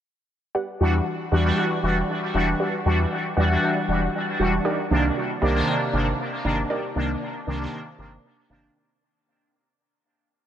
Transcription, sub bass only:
0.80 1.00 E2 medium
1.31 1.52 E2 medium
1.83 2.03 E1 medium
2.34 2.54 E1 loud
2.85 3.05 E2 loud
3.37 3.57 E2 medium
3.88 4.08 E1 medium
4.39 4.59 E1 loud
4.91 5.11 C2 loud
5.42 5.62 C2 loud
5.93 6.13 G1 medium
6.44 6.64 G1 loud
6.96 7.16 C2 loud
7.47 7.67 C2 loud
7.98 8.18 G1 medium
8.49 8.70 G1 loud

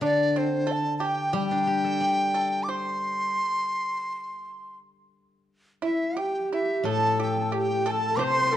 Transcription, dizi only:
0.05 0.39 D5 medium
0.38 0.74 C5 medium
0.72 0.97 A5 medium
0.98 1.08 A5 medium
1.06 1.37 G5 medium
1.38 2.65 G5 loud
2.63 2.72 D6 medium
2.71 4.78 C6 loud
5.84 6.20 E5 medium
6.18 6.52 G5 medium
6.53 6.84 E5 medium
6.89 7.19 A5 medium
7.23 7.53 G5 medium
7.59 7.93 G5 medium
7.91 8.18 A5 loud
8.16 8.26 D6 medium
8.24 8.57 C6 loud

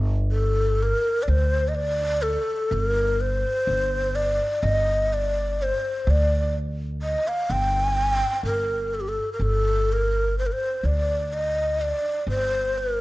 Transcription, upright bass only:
0.00 0.92 G1 loud
1.28 2.35 D2 medium
2.71 3.43 G1 medium
3.67 4.39 G1 medium
4.63 5.70 G1 medium
6.07 7.14 D2 medium
7.50 8.21 G1 medium
8.43 9.15 G1 medium
9.39 10.47 G1 medium
10.83 11.91 D2 medium
12.27 12.99 G1 medium

